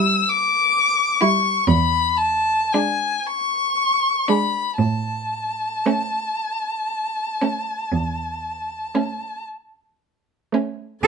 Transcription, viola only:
0.00 0.19 G3 medium
1.22 1.56 G3 soft
2.75 3.15 G#3 soft
4.29 4.67 G#3 medium
5.86 6.25 A3 soft
7.42 7.80 A3 soft
8.95 9.32 A3 soft
10.52 10.91 A3 soft

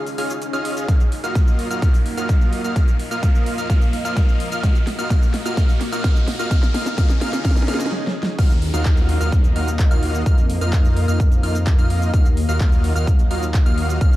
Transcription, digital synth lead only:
0.18 0.32 F6 medium
0.53 0.86 F6 loud
0.89 1.02 F6 medium
1.24 1.68 F6 medium
1.71 1.80 F6 medium
1.82 1.96 F6 medium
2.17 2.61 F6 loud
2.64 2.74 F6 medium
2.76 2.89 F6 medium
3.11 3.55 F6 medium
3.58 3.68 F6 medium
3.70 3.83 F6 medium
4.05 4.49 F6 loud
4.52 4.62 F6 medium
4.63 4.77 F6 medium
4.99 5.09 F6 loud
5.46 5.55 F6 loud
5.92 6.02 F6 loud
6.04 6.17 F6 medium
6.39 6.49 F6 loud
6.51 6.64 F6 medium
6.74 6.88 F6 medium
6.98 7.11 F6 medium
7.21 7.35 F6 loud
7.45 7.58 F6 medium
7.68 7.82 F6 medium
8.39 8.52 F6 medium
8.74 9.18 F6 loud
9.21 9.34 F6 medium
9.56 9.69 F6 medium
9.91 10.23 F6 loud
10.26 10.39 F6 medium
10.61 11.05 F6 loud
11.08 11.21 F6 loud
11.43 11.57 F6 medium
11.78 12.11 F6 loud
12.14 12.27 F6 medium
12.49 12.93 F6 loud
12.95 13.09 F6 medium
13.31 13.44 F6 medium
13.66 13.98 F6 loud
14.01 14.14 F6 medium

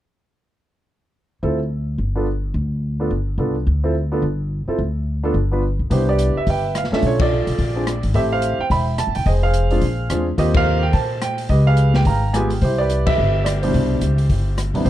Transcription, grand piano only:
1.43 1.58 C4 medium
1.43 1.58 E4 soft
1.43 1.58 F4 soft
1.43 1.58 A4 medium
2.15 2.25 B3 medium
2.15 2.26 D4 soft
2.15 2.26 F4 soft
2.15 2.26 A4 medium
3.00 3.10 B3 medium
3.00 3.10 D4 soft
3.00 3.10 F4 soft
3.00 3.10 A4 medium
3.38 3.54 B3 soft
3.38 3.54 D4 soft
3.38 3.54 F4 soft
3.38 3.54 A4 medium
3.84 3.94 C4 medium
3.84 3.94 E4 medium
3.84 3.94 F4 soft
3.84 3.94 A4 medium
4.12 4.21 B3 medium
4.12 4.22 D4 soft
4.12 4.22 F4 medium
4.12 4.22 A4 medium
4.68 4.78 C4 medium
4.68 4.78 E4 soft
4.68 4.78 F4 soft
4.68 4.78 A4 medium
5.23 5.33 B3 medium
5.23 5.33 D4 medium
5.23 5.34 F4 medium
5.23 5.34 A4 medium
5.51 5.61 B3 medium
5.51 5.62 D4 soft
5.51 5.62 F4 medium
5.51 5.62 B4 medium
5.90 6.32 B3 medium
5.90 6.32 D4 soft
5.90 6.32 E4 soft
5.90 6.08 G4 medium
5.90 6.07 C5 medium
6.08 6.60 G4 medium
6.08 6.49 B4 medium
6.08 6.37 D5 medium
6.37 6.47 E5 medium
6.49 7.00 B4 medium
6.49 6.93 E5 medium
6.49 6.77 G5 medium
6.78 6.83 F5 medium
6.92 7.28 C#4 medium
6.92 7.28 D4 medium
6.92 7.05 F4 medium
6.92 7.05 A4 medium
6.92 7.03 E5 medium
7.07 7.21 F4 medium
7.07 7.20 A4 medium
7.07 7.22 C#5 medium
7.22 7.75 F4 medium
7.22 7.57 A4 medium
7.22 8.00 D5 medium
7.76 7.85 C4 medium
7.76 7.85 D4 soft
7.76 7.86 F4 soft
7.76 7.86 G#4 medium
8.14 8.56 A3 medium
8.14 8.56 C4 medium
8.14 8.56 E4 medium
8.14 8.56 G4 medium
8.14 8.32 C5 medium
8.14 8.20 E5 medium
8.32 8.84 C5 medium
8.32 8.61 F5 medium
8.61 8.65 G5 medium
8.71 9.24 E5 medium
8.71 9.14 G5 medium
8.71 9.00 B5 medium
8.99 9.16 A5 medium
9.16 9.27 G5 medium
9.26 9.43 G#4 medium
9.26 9.43 C5 medium
9.26 9.31 D#5 medium
9.43 10.24 G#4 medium
9.43 10.24 C5 medium
9.43 10.23 F5 medium
9.71 9.81 G#3 medium
9.71 9.81 C4 medium
9.71 9.81 D4 medium
9.71 9.82 F4 medium
10.10 10.25 G#3 medium
10.10 10.26 C4 soft
10.10 10.26 D4 soft
10.10 10.26 F4 medium
10.38 10.79 A#3 medium
10.38 10.80 C4 medium
10.38 10.79 F4 medium
10.38 10.80 G4 medium
10.38 10.56 C5 medium
10.38 10.56 D#5 medium
10.57 11.09 A#4 medium
10.57 10.94 C5 medium
10.57 10.85 F5 loud
10.83 10.93 G5 medium
10.93 11.47 C5 medium
10.93 11.19 A5 medium
11.22 11.38 G5 medium
11.50 12.03 G4 medium
11.50 11.67 B4 medium
11.50 11.65 D#5 medium
11.67 12.20 G#4 medium
11.67 12.20 B4 medium
11.67 11.93 F5 medium
11.95 12.00 G5 medium
12.07 12.59 F5 medium
12.07 12.59 G5 medium
12.07 12.35 A#5 medium
12.33 12.49 G#3 medium
12.33 12.50 B3 medium
12.33 12.50 F4 medium
12.33 12.50 G4 medium
12.33 12.49 G#5 medium
12.62 13.15 E4 medium
12.62 12.79 G4 medium
12.62 12.78 C5 medium
12.78 13.07 G4 medium
12.78 13.07 B4 medium
12.78 13.07 D5 medium
13.06 13.59 G4 medium
13.06 13.60 B4 medium
13.06 13.47 E5 medium
13.44 13.49 D5 medium
13.62 14.00 B2 medium
13.62 14.00 G3 medium
13.62 14.00 D4 medium
13.62 14.54 E4 soft
13.62 14.54 G4 medium
13.62 14.53 C5 medium
14.74 14.90 C3 medium
14.74 14.90 G3 soft
14.74 14.90 B3 soft
14.74 14.90 D4 soft
14.74 14.84 E4 medium
14.85 14.90 E4 medium
14.85 14.90 G4 medium
14.85 14.90 C5 medium

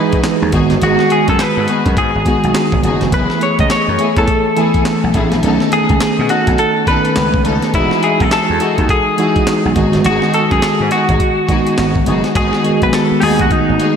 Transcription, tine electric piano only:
0.00 0.54 E3 medium
0.00 0.53 G#3 medium
0.00 0.55 D#4 medium
0.00 0.54 F#4 medium
0.00 0.53 G#4 medium
0.52 1.46 D#3 loud
0.52 1.46 G#3 medium
0.52 1.47 B3 medium
0.52 1.47 F#4 loud
2.26 2.89 D#3 medium
2.26 2.89 G#3 medium
2.26 2.89 B3 medium
2.26 2.89 F#4 medium
3.12 3.96 E3 medium
3.12 3.96 A3 medium
3.12 3.96 B3 medium
3.12 3.96 G#4 medium
4.57 5.20 E3 medium
4.57 5.20 A3 medium
4.57 5.20 B3 medium
4.57 5.20 G#5 medium
5.43 6.27 D#3 medium
5.43 6.27 A3 medium
5.43 6.27 B3 medium
5.43 6.27 C#4 medium
6.87 7.50 D#3 medium
6.87 7.51 B3 medium
6.87 7.51 C#4 medium
6.87 7.51 A4 medium
7.74 8.57 E3 medium
7.74 8.58 G#3 medium
7.74 8.58 D#4 medium
7.74 8.58 F#4 medium
9.18 9.76 E3 medium
9.18 9.75 G#3 medium
9.18 9.76 D#4 medium
9.18 9.76 F#4 medium
9.76 10.69 D#3 loud
9.76 10.70 G#3 medium
9.76 10.70 B3 medium
9.76 10.70 F#4 loud
11.49 12.12 D#3 medium
11.49 12.12 G#3 medium
11.49 12.12 B3 medium
11.49 12.12 F#4 medium
11.78 12.32 F#5 medium
12.35 12.58 D#3 medium
12.35 12.58 G#3 medium
12.35 12.58 B3 medium
12.35 12.58 F#4 medium
12.64 13.08 D#3 medium
12.64 13.08 G#3 medium
12.64 13.09 B3 medium
12.64 13.09 F#4 medium
13.22 13.96 D#3 medium
13.22 13.96 G#3 medium
13.22 13.30 A3 medium
13.22 13.96 D#4 medium
13.29 13.96 B3 medium

